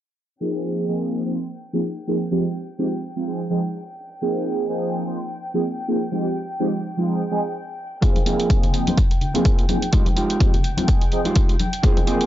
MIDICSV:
0, 0, Header, 1, 6, 480
1, 0, Start_track
1, 0, Key_signature, -4, "minor"
1, 0, Tempo, 476190
1, 408, Time_signature, 4, 2, 24, 8
1, 12359, End_track
2, 0, Start_track
2, 0, Title_t, "String section"
2, 0, Program_c, 0, 48
2, 411, Note_on_c, 0, 79, 72
2, 8074, Note_off_c, 0, 79, 0
2, 8086, Note_on_c, 0, 79, 76
2, 12359, Note_off_c, 0, 79, 0
2, 12359, End_track
3, 0, Start_track
3, 0, Title_t, "Clean electric guitar"
3, 0, Program_c, 1, 27
3, 8083, Note_on_c, 1, 58, 99
3, 8089, Note_on_c, 1, 65, 100
3, 8090, Note_on_c, 1, 60, 89
3, 8095, Note_on_c, 1, 68, 106
3, 8222, Note_off_c, 1, 58, 0
3, 8223, Note_off_c, 1, 60, 0
3, 8225, Note_off_c, 1, 65, 0
3, 8226, Note_off_c, 1, 68, 0
3, 8324, Note_on_c, 1, 58, 79
3, 8328, Note_on_c, 1, 65, 63
3, 8330, Note_on_c, 1, 60, 62
3, 8334, Note_on_c, 1, 68, 85
3, 8702, Note_off_c, 1, 58, 0
3, 8703, Note_off_c, 1, 60, 0
3, 8705, Note_off_c, 1, 65, 0
3, 8706, Note_off_c, 1, 68, 0
3, 9418, Note_on_c, 1, 58, 84
3, 9423, Note_on_c, 1, 65, 78
3, 9426, Note_on_c, 1, 60, 60
3, 9432, Note_on_c, 1, 68, 81
3, 9714, Note_off_c, 1, 58, 0
3, 9716, Note_off_c, 1, 60, 0
3, 9717, Note_off_c, 1, 65, 0
3, 9719, Note_off_c, 1, 68, 0
3, 10004, Note_on_c, 1, 56, 106
3, 10009, Note_on_c, 1, 63, 89
3, 10009, Note_on_c, 1, 65, 100
3, 10014, Note_on_c, 1, 67, 122
3, 10142, Note_off_c, 1, 56, 0
3, 10143, Note_off_c, 1, 63, 0
3, 10144, Note_off_c, 1, 65, 0
3, 10147, Note_off_c, 1, 67, 0
3, 10244, Note_on_c, 1, 56, 80
3, 10248, Note_on_c, 1, 65, 76
3, 10249, Note_on_c, 1, 63, 62
3, 10257, Note_on_c, 1, 67, 77
3, 10622, Note_off_c, 1, 56, 0
3, 10623, Note_off_c, 1, 63, 0
3, 10624, Note_off_c, 1, 65, 0
3, 10626, Note_off_c, 1, 67, 0
3, 11341, Note_on_c, 1, 56, 82
3, 11346, Note_on_c, 1, 65, 75
3, 11347, Note_on_c, 1, 63, 64
3, 11354, Note_on_c, 1, 67, 76
3, 11635, Note_off_c, 1, 56, 0
3, 11637, Note_off_c, 1, 63, 0
3, 11638, Note_off_c, 1, 65, 0
3, 11640, Note_off_c, 1, 67, 0
3, 11924, Note_on_c, 1, 58, 114
3, 11929, Note_on_c, 1, 60, 92
3, 11930, Note_on_c, 1, 65, 104
3, 11936, Note_on_c, 1, 68, 108
3, 12062, Note_off_c, 1, 58, 0
3, 12063, Note_off_c, 1, 60, 0
3, 12065, Note_off_c, 1, 65, 0
3, 12066, Note_off_c, 1, 68, 0
3, 12165, Note_on_c, 1, 58, 79
3, 12169, Note_on_c, 1, 65, 73
3, 12172, Note_on_c, 1, 60, 59
3, 12178, Note_on_c, 1, 68, 84
3, 12359, Note_off_c, 1, 58, 0
3, 12359, Note_off_c, 1, 60, 0
3, 12359, Note_off_c, 1, 65, 0
3, 12359, Note_off_c, 1, 68, 0
3, 12359, End_track
4, 0, Start_track
4, 0, Title_t, "Analog polysynth"
4, 0, Program_c, 2, 90
4, 405, Note_on_c, 2, 53, 74
4, 409, Note_on_c, 2, 58, 68
4, 410, Note_on_c, 2, 60, 65
4, 411, Note_on_c, 2, 63, 68
4, 413, Note_on_c, 2, 68, 81
4, 862, Note_off_c, 2, 53, 0
4, 864, Note_off_c, 2, 58, 0
4, 864, Note_off_c, 2, 60, 0
4, 865, Note_off_c, 2, 63, 0
4, 866, Note_off_c, 2, 68, 0
4, 886, Note_on_c, 2, 53, 85
4, 888, Note_on_c, 2, 58, 75
4, 889, Note_on_c, 2, 60, 77
4, 891, Note_on_c, 2, 63, 75
4, 894, Note_on_c, 2, 68, 92
4, 1230, Note_off_c, 2, 53, 0
4, 1231, Note_off_c, 2, 58, 0
4, 1232, Note_off_c, 2, 60, 0
4, 1233, Note_off_c, 2, 63, 0
4, 1234, Note_off_c, 2, 68, 0
4, 1262, Note_on_c, 2, 53, 73
4, 1263, Note_on_c, 2, 58, 67
4, 1265, Note_on_c, 2, 60, 67
4, 1268, Note_on_c, 2, 63, 65
4, 1270, Note_on_c, 2, 72, 81
4, 1372, Note_off_c, 2, 53, 0
4, 1372, Note_off_c, 2, 58, 0
4, 1373, Note_off_c, 2, 60, 0
4, 1375, Note_off_c, 2, 63, 0
4, 1376, Note_off_c, 2, 72, 0
4, 1742, Note_on_c, 2, 53, 88
4, 1743, Note_on_c, 2, 58, 85
4, 1745, Note_on_c, 2, 60, 83
4, 1749, Note_on_c, 2, 63, 80
4, 1749, Note_on_c, 2, 68, 102
4, 1811, Note_off_c, 2, 53, 0
4, 1811, Note_off_c, 2, 58, 0
4, 1812, Note_off_c, 2, 60, 0
4, 1814, Note_off_c, 2, 63, 0
4, 1814, Note_off_c, 2, 68, 0
4, 2087, Note_on_c, 2, 53, 74
4, 2089, Note_on_c, 2, 58, 70
4, 2090, Note_on_c, 2, 60, 68
4, 2093, Note_on_c, 2, 63, 69
4, 2096, Note_on_c, 2, 68, 86
4, 2175, Note_off_c, 2, 53, 0
4, 2176, Note_off_c, 2, 58, 0
4, 2177, Note_off_c, 2, 60, 0
4, 2178, Note_off_c, 2, 63, 0
4, 2179, Note_off_c, 2, 68, 0
4, 2326, Note_on_c, 2, 53, 81
4, 2328, Note_on_c, 2, 56, 73
4, 2330, Note_on_c, 2, 60, 77
4, 2333, Note_on_c, 2, 63, 74
4, 2335, Note_on_c, 2, 67, 89
4, 2466, Note_off_c, 2, 53, 0
4, 2467, Note_off_c, 2, 56, 0
4, 2468, Note_off_c, 2, 60, 0
4, 2469, Note_off_c, 2, 63, 0
4, 2471, Note_off_c, 2, 67, 0
4, 2806, Note_on_c, 2, 53, 98
4, 2806, Note_on_c, 2, 56, 91
4, 2810, Note_on_c, 2, 60, 88
4, 2811, Note_on_c, 2, 63, 88
4, 2814, Note_on_c, 2, 67, 109
4, 2895, Note_off_c, 2, 53, 0
4, 2895, Note_off_c, 2, 56, 0
4, 2896, Note_off_c, 2, 60, 0
4, 2897, Note_off_c, 2, 63, 0
4, 2899, Note_off_c, 2, 67, 0
4, 3182, Note_on_c, 2, 53, 70
4, 3184, Note_on_c, 2, 56, 65
4, 3186, Note_on_c, 2, 60, 65
4, 3188, Note_on_c, 2, 63, 66
4, 3189, Note_on_c, 2, 65, 78
4, 3263, Note_off_c, 2, 53, 0
4, 3264, Note_off_c, 2, 56, 0
4, 3265, Note_off_c, 2, 60, 0
4, 3266, Note_off_c, 2, 63, 0
4, 3266, Note_off_c, 2, 65, 0
4, 3285, Note_on_c, 2, 53, 76
4, 3287, Note_on_c, 2, 56, 69
4, 3290, Note_on_c, 2, 60, 66
4, 3292, Note_on_c, 2, 63, 68
4, 3294, Note_on_c, 2, 68, 80
4, 3426, Note_off_c, 2, 53, 0
4, 3426, Note_off_c, 2, 56, 0
4, 3428, Note_off_c, 2, 60, 0
4, 3429, Note_off_c, 2, 63, 0
4, 3430, Note_off_c, 2, 68, 0
4, 3524, Note_on_c, 2, 53, 96
4, 3525, Note_on_c, 2, 56, 89
4, 3530, Note_on_c, 2, 60, 88
4, 3532, Note_on_c, 2, 63, 87
4, 3534, Note_on_c, 2, 68, 103
4, 3614, Note_off_c, 2, 53, 0
4, 3614, Note_off_c, 2, 56, 0
4, 3617, Note_off_c, 2, 60, 0
4, 3618, Note_off_c, 2, 63, 0
4, 3619, Note_off_c, 2, 68, 0
4, 4247, Note_on_c, 2, 53, 74
4, 4249, Note_on_c, 2, 58, 68
4, 4251, Note_on_c, 2, 60, 69
4, 4253, Note_on_c, 2, 63, 71
4, 4254, Note_on_c, 2, 68, 83
4, 4703, Note_off_c, 2, 53, 0
4, 4704, Note_off_c, 2, 58, 0
4, 4705, Note_off_c, 2, 60, 0
4, 4706, Note_off_c, 2, 63, 0
4, 4706, Note_off_c, 2, 68, 0
4, 4727, Note_on_c, 2, 53, 85
4, 4728, Note_on_c, 2, 58, 77
4, 4732, Note_on_c, 2, 60, 77
4, 4733, Note_on_c, 2, 63, 75
4, 4734, Note_on_c, 2, 68, 93
4, 5071, Note_off_c, 2, 53, 0
4, 5071, Note_off_c, 2, 58, 0
4, 5073, Note_off_c, 2, 60, 0
4, 5074, Note_off_c, 2, 63, 0
4, 5074, Note_off_c, 2, 68, 0
4, 5103, Note_on_c, 2, 53, 73
4, 5105, Note_on_c, 2, 58, 68
4, 5106, Note_on_c, 2, 60, 65
4, 5109, Note_on_c, 2, 63, 70
4, 5111, Note_on_c, 2, 72, 82
4, 5212, Note_off_c, 2, 53, 0
4, 5214, Note_off_c, 2, 58, 0
4, 5214, Note_off_c, 2, 60, 0
4, 5215, Note_off_c, 2, 63, 0
4, 5217, Note_off_c, 2, 72, 0
4, 5581, Note_on_c, 2, 53, 88
4, 5582, Note_on_c, 2, 58, 81
4, 5584, Note_on_c, 2, 60, 79
4, 5587, Note_on_c, 2, 63, 81
4, 5589, Note_on_c, 2, 68, 102
4, 5650, Note_off_c, 2, 53, 0
4, 5650, Note_off_c, 2, 58, 0
4, 5652, Note_off_c, 2, 60, 0
4, 5653, Note_off_c, 2, 63, 0
4, 5654, Note_off_c, 2, 68, 0
4, 5924, Note_on_c, 2, 53, 76
4, 5926, Note_on_c, 2, 58, 70
4, 5928, Note_on_c, 2, 60, 70
4, 5931, Note_on_c, 2, 63, 68
4, 5931, Note_on_c, 2, 68, 80
4, 6014, Note_off_c, 2, 53, 0
4, 6015, Note_off_c, 2, 58, 0
4, 6016, Note_off_c, 2, 60, 0
4, 6017, Note_off_c, 2, 63, 0
4, 6017, Note_off_c, 2, 68, 0
4, 6163, Note_on_c, 2, 53, 77
4, 6165, Note_on_c, 2, 56, 72
4, 6166, Note_on_c, 2, 60, 74
4, 6170, Note_on_c, 2, 63, 72
4, 6170, Note_on_c, 2, 67, 90
4, 6304, Note_off_c, 2, 53, 0
4, 6306, Note_off_c, 2, 56, 0
4, 6306, Note_off_c, 2, 60, 0
4, 6308, Note_off_c, 2, 63, 0
4, 6308, Note_off_c, 2, 67, 0
4, 6646, Note_on_c, 2, 53, 97
4, 6648, Note_on_c, 2, 56, 92
4, 6650, Note_on_c, 2, 60, 90
4, 6653, Note_on_c, 2, 63, 87
4, 6654, Note_on_c, 2, 67, 106
4, 6735, Note_off_c, 2, 53, 0
4, 6736, Note_off_c, 2, 56, 0
4, 6736, Note_off_c, 2, 60, 0
4, 6738, Note_off_c, 2, 63, 0
4, 6739, Note_off_c, 2, 67, 0
4, 7022, Note_on_c, 2, 53, 73
4, 7024, Note_on_c, 2, 56, 64
4, 7025, Note_on_c, 2, 60, 65
4, 7029, Note_on_c, 2, 63, 68
4, 7031, Note_on_c, 2, 65, 83
4, 7102, Note_off_c, 2, 53, 0
4, 7103, Note_off_c, 2, 56, 0
4, 7104, Note_off_c, 2, 60, 0
4, 7106, Note_off_c, 2, 63, 0
4, 7107, Note_off_c, 2, 65, 0
4, 7127, Note_on_c, 2, 53, 75
4, 7127, Note_on_c, 2, 56, 66
4, 7130, Note_on_c, 2, 60, 69
4, 7133, Note_on_c, 2, 63, 70
4, 7134, Note_on_c, 2, 68, 82
4, 7266, Note_off_c, 2, 53, 0
4, 7267, Note_off_c, 2, 56, 0
4, 7268, Note_off_c, 2, 60, 0
4, 7269, Note_off_c, 2, 63, 0
4, 7270, Note_off_c, 2, 68, 0
4, 7365, Note_on_c, 2, 53, 93
4, 7368, Note_on_c, 2, 56, 86
4, 7369, Note_on_c, 2, 60, 86
4, 7370, Note_on_c, 2, 63, 88
4, 7373, Note_on_c, 2, 68, 102
4, 7454, Note_off_c, 2, 53, 0
4, 7456, Note_off_c, 2, 56, 0
4, 7456, Note_off_c, 2, 60, 0
4, 7457, Note_off_c, 2, 63, 0
4, 7458, Note_off_c, 2, 68, 0
4, 8085, Note_on_c, 2, 53, 74
4, 8087, Note_on_c, 2, 58, 68
4, 8090, Note_on_c, 2, 60, 68
4, 8092, Note_on_c, 2, 63, 67
4, 8093, Note_on_c, 2, 68, 83
4, 8542, Note_off_c, 2, 53, 0
4, 8543, Note_off_c, 2, 58, 0
4, 8544, Note_off_c, 2, 60, 0
4, 8545, Note_off_c, 2, 63, 0
4, 8546, Note_off_c, 2, 68, 0
4, 8568, Note_on_c, 2, 53, 84
4, 8569, Note_on_c, 2, 58, 77
4, 8571, Note_on_c, 2, 60, 77
4, 8574, Note_on_c, 2, 63, 77
4, 8575, Note_on_c, 2, 68, 91
4, 8911, Note_off_c, 2, 53, 0
4, 8912, Note_off_c, 2, 58, 0
4, 8913, Note_off_c, 2, 60, 0
4, 8914, Note_off_c, 2, 63, 0
4, 8915, Note_off_c, 2, 68, 0
4, 8940, Note_on_c, 2, 53, 73
4, 8942, Note_on_c, 2, 58, 68
4, 8943, Note_on_c, 2, 60, 65
4, 8945, Note_on_c, 2, 63, 66
4, 8947, Note_on_c, 2, 72, 81
4, 9051, Note_off_c, 2, 53, 0
4, 9052, Note_off_c, 2, 58, 0
4, 9053, Note_off_c, 2, 60, 0
4, 9053, Note_off_c, 2, 63, 0
4, 9054, Note_off_c, 2, 72, 0
4, 9423, Note_on_c, 2, 53, 89
4, 9426, Note_on_c, 2, 58, 85
4, 9427, Note_on_c, 2, 60, 84
4, 9430, Note_on_c, 2, 63, 85
4, 9431, Note_on_c, 2, 68, 100
4, 9491, Note_off_c, 2, 53, 0
4, 9492, Note_off_c, 2, 58, 0
4, 9493, Note_off_c, 2, 60, 0
4, 9494, Note_off_c, 2, 63, 0
4, 9495, Note_off_c, 2, 68, 0
4, 9766, Note_on_c, 2, 53, 77
4, 9768, Note_on_c, 2, 58, 71
4, 9771, Note_on_c, 2, 60, 73
4, 9773, Note_on_c, 2, 63, 72
4, 9774, Note_on_c, 2, 68, 85
4, 9855, Note_off_c, 2, 53, 0
4, 9856, Note_off_c, 2, 58, 0
4, 9857, Note_off_c, 2, 60, 0
4, 9858, Note_off_c, 2, 63, 0
4, 9859, Note_off_c, 2, 68, 0
4, 10004, Note_on_c, 2, 53, 80
4, 10005, Note_on_c, 2, 56, 73
4, 10008, Note_on_c, 2, 60, 74
4, 10009, Note_on_c, 2, 63, 76
4, 10012, Note_on_c, 2, 67, 88
4, 10145, Note_off_c, 2, 53, 0
4, 10146, Note_off_c, 2, 56, 0
4, 10147, Note_off_c, 2, 60, 0
4, 10148, Note_off_c, 2, 63, 0
4, 10149, Note_off_c, 2, 67, 0
4, 10485, Note_on_c, 2, 53, 99
4, 10486, Note_on_c, 2, 56, 91
4, 10488, Note_on_c, 2, 60, 91
4, 10490, Note_on_c, 2, 63, 90
4, 10492, Note_on_c, 2, 67, 106
4, 10574, Note_off_c, 2, 53, 0
4, 10575, Note_off_c, 2, 56, 0
4, 10576, Note_off_c, 2, 60, 0
4, 10577, Note_off_c, 2, 63, 0
4, 10578, Note_off_c, 2, 67, 0
4, 10861, Note_on_c, 2, 53, 73
4, 10862, Note_on_c, 2, 56, 67
4, 10865, Note_on_c, 2, 60, 67
4, 10867, Note_on_c, 2, 63, 67
4, 10869, Note_on_c, 2, 65, 77
4, 10942, Note_off_c, 2, 53, 0
4, 10943, Note_off_c, 2, 56, 0
4, 10944, Note_off_c, 2, 60, 0
4, 10945, Note_off_c, 2, 63, 0
4, 10946, Note_off_c, 2, 65, 0
4, 10965, Note_on_c, 2, 53, 72
4, 10967, Note_on_c, 2, 56, 72
4, 10969, Note_on_c, 2, 60, 68
4, 10970, Note_on_c, 2, 63, 69
4, 10974, Note_on_c, 2, 68, 84
4, 11105, Note_off_c, 2, 53, 0
4, 11107, Note_off_c, 2, 56, 0
4, 11107, Note_off_c, 2, 60, 0
4, 11108, Note_off_c, 2, 63, 0
4, 11110, Note_off_c, 2, 68, 0
4, 11206, Note_on_c, 2, 53, 94
4, 11209, Note_on_c, 2, 56, 84
4, 11210, Note_on_c, 2, 60, 87
4, 11213, Note_on_c, 2, 63, 88
4, 11215, Note_on_c, 2, 68, 105
4, 11295, Note_off_c, 2, 53, 0
4, 11296, Note_off_c, 2, 56, 0
4, 11297, Note_off_c, 2, 60, 0
4, 11298, Note_off_c, 2, 63, 0
4, 11299, Note_off_c, 2, 68, 0
4, 11926, Note_on_c, 2, 53, 75
4, 11929, Note_on_c, 2, 58, 68
4, 11929, Note_on_c, 2, 60, 70
4, 11933, Note_on_c, 2, 63, 70
4, 11934, Note_on_c, 2, 68, 83
4, 12359, Note_off_c, 2, 53, 0
4, 12359, Note_off_c, 2, 58, 0
4, 12359, Note_off_c, 2, 60, 0
4, 12359, Note_off_c, 2, 63, 0
4, 12359, Note_off_c, 2, 68, 0
4, 12359, End_track
5, 0, Start_track
5, 0, Title_t, "Muted clean electric guitar strokes"
5, 9044, Note_on_c, 9, 29, 85
5, 9145, Note_off_c, 9, 29, 0
5, 9180, Note_on_c, 9, 29, 31
5, 9281, Note_off_c, 9, 29, 0
5, 10963, Note_on_c, 9, 29, 86
5, 11064, Note_off_c, 9, 29, 0
5, 11101, Note_on_c, 9, 29, 32
5, 11202, Note_off_c, 9, 29, 0
5, 12359, End_track
6, 0, Start_track
6, 0, Title_t, "Drums"
6, 8088, Note_on_c, 9, 36, 111
6, 8089, Note_on_c, 9, 42, 84
6, 8189, Note_off_c, 9, 36, 0
6, 8190, Note_off_c, 9, 42, 0
6, 8218, Note_on_c, 9, 54, 25
6, 8221, Note_on_c, 9, 63, 80
6, 8224, Note_on_c, 9, 42, 34
6, 8318, Note_off_c, 9, 54, 0
6, 8321, Note_off_c, 9, 63, 0
6, 8325, Note_off_c, 9, 42, 0
6, 8328, Note_on_c, 9, 42, 62
6, 8331, Note_on_c, 9, 54, 76
6, 8429, Note_off_c, 9, 42, 0
6, 8431, Note_off_c, 9, 54, 0
6, 8463, Note_on_c, 9, 42, 36
6, 8463, Note_on_c, 9, 54, 33
6, 8564, Note_off_c, 9, 42, 0
6, 8564, Note_off_c, 9, 54, 0
6, 8568, Note_on_c, 9, 36, 115
6, 8568, Note_on_c, 9, 42, 81
6, 8570, Note_on_c, 9, 63, 64
6, 8579, Note_on_c, 9, 54, 48
6, 8669, Note_off_c, 9, 36, 0
6, 8669, Note_off_c, 9, 42, 0
6, 8671, Note_off_c, 9, 63, 0
6, 8679, Note_off_c, 9, 54, 0
6, 8703, Note_on_c, 9, 42, 35
6, 8703, Note_on_c, 9, 64, 79
6, 8711, Note_on_c, 9, 54, 23
6, 8804, Note_off_c, 9, 42, 0
6, 8804, Note_off_c, 9, 64, 0
6, 8808, Note_on_c, 9, 42, 58
6, 8812, Note_off_c, 9, 54, 0
6, 8813, Note_on_c, 9, 54, 82
6, 8909, Note_off_c, 9, 42, 0
6, 8913, Note_off_c, 9, 54, 0
6, 8940, Note_on_c, 9, 54, 32
6, 8943, Note_on_c, 9, 42, 35
6, 8948, Note_on_c, 9, 63, 89
6, 9041, Note_off_c, 9, 54, 0
6, 9044, Note_off_c, 9, 42, 0
6, 9046, Note_on_c, 9, 54, 52
6, 9047, Note_on_c, 9, 42, 84
6, 9048, Note_on_c, 9, 36, 111
6, 9049, Note_off_c, 9, 63, 0
6, 9147, Note_off_c, 9, 54, 0
6, 9148, Note_off_c, 9, 42, 0
6, 9149, Note_off_c, 9, 36, 0
6, 9183, Note_on_c, 9, 42, 35
6, 9192, Note_on_c, 9, 54, 24
6, 9284, Note_off_c, 9, 42, 0
6, 9286, Note_on_c, 9, 64, 65
6, 9287, Note_on_c, 9, 42, 33
6, 9290, Note_off_c, 9, 54, 0
6, 9290, Note_on_c, 9, 54, 76
6, 9387, Note_off_c, 9, 64, 0
6, 9388, Note_off_c, 9, 42, 0
6, 9391, Note_off_c, 9, 54, 0
6, 9418, Note_on_c, 9, 54, 37
6, 9424, Note_on_c, 9, 42, 35
6, 9428, Note_on_c, 9, 63, 56
6, 9519, Note_off_c, 9, 54, 0
6, 9524, Note_off_c, 9, 42, 0
6, 9527, Note_on_c, 9, 42, 85
6, 9529, Note_off_c, 9, 63, 0
6, 9529, Note_on_c, 9, 36, 108
6, 9628, Note_off_c, 9, 42, 0
6, 9629, Note_off_c, 9, 36, 0
6, 9663, Note_on_c, 9, 42, 37
6, 9764, Note_off_c, 9, 42, 0
6, 9766, Note_on_c, 9, 42, 58
6, 9766, Note_on_c, 9, 63, 97
6, 9773, Note_on_c, 9, 54, 78
6, 9867, Note_off_c, 9, 42, 0
6, 9867, Note_off_c, 9, 63, 0
6, 9873, Note_off_c, 9, 54, 0
6, 9898, Note_on_c, 9, 54, 35
6, 9903, Note_on_c, 9, 42, 36
6, 9999, Note_off_c, 9, 54, 0
6, 10004, Note_off_c, 9, 42, 0
6, 10006, Note_on_c, 9, 42, 86
6, 10009, Note_on_c, 9, 36, 106
6, 10106, Note_off_c, 9, 42, 0
6, 10110, Note_off_c, 9, 36, 0
6, 10136, Note_on_c, 9, 54, 22
6, 10142, Note_on_c, 9, 42, 37
6, 10144, Note_on_c, 9, 63, 82
6, 10237, Note_off_c, 9, 54, 0
6, 10240, Note_on_c, 9, 54, 86
6, 10243, Note_off_c, 9, 42, 0
6, 10244, Note_off_c, 9, 63, 0
6, 10247, Note_on_c, 9, 42, 63
6, 10341, Note_off_c, 9, 54, 0
6, 10348, Note_off_c, 9, 42, 0
6, 10382, Note_on_c, 9, 42, 36
6, 10483, Note_off_c, 9, 42, 0
6, 10487, Note_on_c, 9, 42, 89
6, 10487, Note_on_c, 9, 54, 47
6, 10489, Note_on_c, 9, 36, 114
6, 10490, Note_on_c, 9, 63, 60
6, 10588, Note_off_c, 9, 42, 0
6, 10588, Note_off_c, 9, 54, 0
6, 10590, Note_off_c, 9, 36, 0
6, 10590, Note_off_c, 9, 63, 0
6, 10623, Note_on_c, 9, 42, 36
6, 10624, Note_on_c, 9, 64, 82
6, 10628, Note_on_c, 9, 54, 23
6, 10723, Note_off_c, 9, 54, 0
6, 10723, Note_on_c, 9, 54, 86
6, 10724, Note_off_c, 9, 42, 0
6, 10725, Note_off_c, 9, 64, 0
6, 10726, Note_on_c, 9, 42, 62
6, 10824, Note_off_c, 9, 54, 0
6, 10827, Note_off_c, 9, 42, 0
6, 10859, Note_on_c, 9, 63, 91
6, 10863, Note_on_c, 9, 42, 37
6, 10868, Note_on_c, 9, 54, 34
6, 10960, Note_off_c, 9, 63, 0
6, 10964, Note_off_c, 9, 42, 0
6, 10968, Note_on_c, 9, 42, 89
6, 10969, Note_off_c, 9, 54, 0
6, 10970, Note_on_c, 9, 36, 108
6, 11069, Note_off_c, 9, 42, 0
6, 11070, Note_off_c, 9, 36, 0
6, 11103, Note_on_c, 9, 42, 37
6, 11106, Note_on_c, 9, 54, 23
6, 11203, Note_off_c, 9, 42, 0
6, 11204, Note_off_c, 9, 54, 0
6, 11204, Note_on_c, 9, 54, 94
6, 11206, Note_on_c, 9, 42, 34
6, 11304, Note_off_c, 9, 54, 0
6, 11307, Note_off_c, 9, 42, 0
6, 11338, Note_on_c, 9, 63, 54
6, 11340, Note_on_c, 9, 54, 37
6, 11343, Note_on_c, 9, 42, 36
6, 11439, Note_off_c, 9, 63, 0
6, 11441, Note_off_c, 9, 54, 0
6, 11443, Note_off_c, 9, 42, 0
6, 11446, Note_on_c, 9, 42, 89
6, 11450, Note_on_c, 9, 36, 110
6, 11547, Note_off_c, 9, 42, 0
6, 11551, Note_off_c, 9, 36, 0
6, 11584, Note_on_c, 9, 42, 40
6, 11685, Note_off_c, 9, 42, 0
6, 11688, Note_on_c, 9, 42, 61
6, 11691, Note_on_c, 9, 54, 83
6, 11692, Note_on_c, 9, 63, 82
6, 11788, Note_off_c, 9, 42, 0
6, 11791, Note_off_c, 9, 54, 0
6, 11792, Note_off_c, 9, 63, 0
6, 11823, Note_on_c, 9, 54, 36
6, 11824, Note_on_c, 9, 42, 37
6, 11924, Note_off_c, 9, 54, 0
6, 11925, Note_off_c, 9, 42, 0
6, 11929, Note_on_c, 9, 42, 92
6, 11930, Note_on_c, 9, 36, 110
6, 12030, Note_off_c, 9, 42, 0
6, 12031, Note_off_c, 9, 36, 0
6, 12062, Note_on_c, 9, 54, 23
6, 12063, Note_on_c, 9, 63, 91
6, 12066, Note_on_c, 9, 42, 37
6, 12163, Note_off_c, 9, 54, 0
6, 12164, Note_off_c, 9, 63, 0
6, 12166, Note_off_c, 9, 42, 0
6, 12169, Note_on_c, 9, 42, 67
6, 12174, Note_on_c, 9, 54, 83
6, 12270, Note_off_c, 9, 42, 0
6, 12275, Note_off_c, 9, 54, 0
6, 12303, Note_on_c, 9, 54, 34
6, 12305, Note_on_c, 9, 42, 39
6, 12359, Note_off_c, 9, 42, 0
6, 12359, Note_off_c, 9, 54, 0
6, 12359, End_track
0, 0, End_of_file